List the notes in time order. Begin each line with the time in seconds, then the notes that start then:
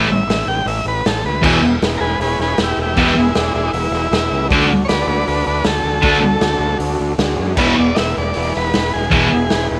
0.02 snare
0.09 A1 E5
0.27 A1, snare, open hi-hat
0.46 A1 G5
0.65 A1 E5, open hi-hat
0.85 A1 B4
1.05 A1 A4, snare, open hi-hat
1.24 D2 B4
1.41 E1 E2 B2 E3 E4 G#4 B4, kick, crash
1.45 E5
1.62 E1
1.81 E1 E4 G#4 B4, snare, open hi-hat
1.97 E1 G#4 A#4
2.02 B4
2.19 E1 E4 G#4 B4, open hi-hat
2.23 G#4 C#5
2.39 E1 G#4 B4, snare
2.58 E1 E4 G#4 B4, snare, open hi-hat
2.63 E4 G4
2.77 E1
2.82 E4 G4
2.96 E1 E2 B2 E3 E4 G4 G#4, kick, open hi-hat
3.01 B4
3.08 snare
3.17 E1 G#3 E4
3.35 E1 G#3 E4 G#4 D5, snare, open hi-hat
3.54 E1 G#3 E4
3.68 D#4 E4 G#4
3.73 E1 E4 B4, open hi-hat
3.91 E1, snare
4.10 E1 E4 G#4 B4, snare, open hi-hat
4.31 C#2
4.48 D2 D3 A3 D4 F#4 A4, kick, open hi-hat
4.54 D4
4.60 snare
4.70 D2
4.85 D4 B4 C#5 D5, open hi-hat
4.89 D2 F#4 A4, snare
5.07 D2 B4 D5
5.23 D2 D4 F#4 A4, open hi-hat
5.28 B4
5.47 D2 D4 B4
5.64 D2 D4 F#4 A4 G#5, snare, open hi-hat
5.83 D2
6.02 D2 D3 A3 D4 F#4 A4, kick, open hi-hat
6.13 snare
6.23 D2
6.37 D2 D4 F#4 A4, open hi-hat
6.41 snare
6.59 D2
6.77 D2 D4 F#4 A4, open hi-hat
7.00 D2
7.18 D2 D4 F#4 G#4, snare, open hi-hat
7.39 F#2
7.56 E1 E2 B2 E4 G#4 B4, kick, crash
7.60 E3
7.68 snare
7.75 E1 C#5
7.80 D5
7.95 E1 E4 G#4 B4 D#5 E5, snare, open hi-hat
8.17 E1 D5
8.34 E1 E4 G#4 B4, open hi-hat
8.54 E1 B4, snare
8.73 E1 E4 G#4 B4, snare, open hi-hat
8.93 E1 G#4
9.10 E1 E2 B2 E3 E4 G#4, kick, open hi-hat
9.15 B4
9.33 E1
9.49 E1 E4 G#4, snare, open hi-hat
9.53 B4
9.71 E1